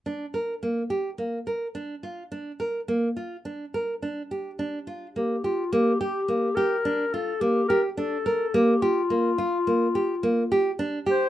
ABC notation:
X:1
M:5/4
L:1/8
Q:1/4=106
K:Gm
V:1 name="Clarinet"
z8 z2 | z8 G F | G G2 B2 A G B A2 | G F6- F z c |]
V:2 name="Nylon-string guitar"
D B B, G B, B D F D B | B, F D B D G D F B, G | B, G B, G D F B, G D B | B, G B, F B, G B, G D G |]